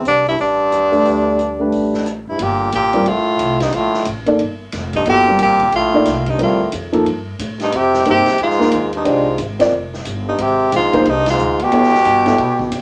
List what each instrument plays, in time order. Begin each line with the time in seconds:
0.05 upright bass C2, trombone G2, tenor saxophone D4, closed hi-hat
0.26 trombone G2, tenor saxophone E4, open hi-hat
0.38 upright bass A1, trombone G2, tenor saxophone D4, open hi-hat
0.72 upright bass D#2, cross-stick, closed hi-hat
0.92 grand piano A3 D4 G4 B4, open hi-hat
1.05 upright bass D2, open hi-hat
1.39 closed hi-hat
1.59 grand piano A3 D4 G4 B4
1.72 upright bass A1, open hi-hat
1.94 snare
2.06 cross-stick, closed hi-hat
2.27 upright bass F#1, trombone G2, tenor saxophone E4
2.39 upright bass G1, trombone A#2, tenor saxophone G4, ride
2.72 upright bass A1, trombone A#2, tenor saxophone G4, hi-hat pedal, ride
2.93 grand piano G3 C4 F4 A#4, ride
3.06 upright bass A#1, trombone A2, tenor saxophone F4, ride
3.39 upright bass C2, hi-hat pedal, ride
3.60 trombone G2, tenor saxophone D#4, snare, ride
3.72 upright bass A#1, trombone A2, tenor saxophone F4, ride
3.94 snare
4.05 upright bass A1, hi-hat pedal, ride
4.26 grand piano A#3 D#4 A4 D5, ride
4.39 upright bass G1, ride
4.72 upright bass F1, snare, hi-hat pedal, ride
4.93 trombone G2, tenor saxophone D#4, kick, ride
5.05 upright bass G1, trombone A#2, grand piano F#3 B3 E4 A4, tenor saxophone G4, ride
5.28 grand piano G3 C4 F4 A#4
5.39 upright bass A1, trombone A#2, tenor saxophone G4, hi-hat pedal, ride
5.60 kick, ride
5.72 upright bass A#1, trombone A2, tenor saxophone F4, ride
5.94 grand piano A#3 D#4 A4 D5
6.05 upright bass C2, snare, hi-hat pedal, ride
6.26 trombone G2, tenor saxophone D#4, kick, ride
6.38 upright bass D2, trombone A2, grand piano G3 C4 F4 A#4, ride
6.43 tenor saxophone F4
6.72 upright bass F2, hi-hat pedal, ride
6.93 grand piano F3 A#3 D#4 A4, ride
7.06 upright bass G2, ride
7.39 upright bass A2, hi-hat pedal, ride
7.60 trombone G2, tenor saxophone D#4, snare, ride
7.72 upright bass F2, trombone C3, tenor saxophone G4, ride
7.94 snare
8.05 upright bass G2, trombone C3, grand piano A#3 D#4 G#4 C5, hi-hat pedal, ride
8.10 tenor saxophone G4
8.26 muted upright bass stroke, snare, ride
8.38 upright bass F2, trombone G#2, ride
8.43 tenor saxophone F4
8.50 snare
8.59 grand piano A#3 D#4 G#4 A#4, snare
8.71 upright bass D#2, hi-hat pedal, ride
8.93 trombone G2, ride
8.97 tenor saxophone D#4
9.04 upright bass C2, trombone G#2, grand piano D4 G4 C5 D#5, ride
9.09 tenor saxophone F4
9.38 upright bass G#1, hi-hat pedal, ride
9.59 grand piano C4 F4 A#4 D5, snare, ride
9.72 upright bass F1
9.93 snare
10.05 upright bass G1, hi-hat pedal, ride
10.27 trombone G2, tenor saxophone D#4
10.38 upright bass G#1, trombone C3, tenor saxophone G4, ride
10.72 upright bass A#1, trombone G#2, hi-hat pedal, ride
10.76 tenor saxophone F4
10.93 grand piano A#3 D#4 G#4 C5, kick, ride
11.05 upright bass C2, trombone G2, ride
11.09 tenor saxophone D#4
11.26 trombone G#2, snare, ride
11.30 tenor saxophone F4
11.38 upright bass D2, hi-hat pedal
11.59 trombone B2, tenor saxophone G4, ride
11.71 upright bass E2, grand piano B3 E4 A4 C#5, ride
11.83 snare
11.94 snare
12.05 upright bass G2, hi-hat pedal, ride
12.25 grand piano B3 E4 A4 C#5, snare, ride
12.38 upright bass B2, ride
12.59 kick
12.71 upright bass C#3, hi-hat pedal, ride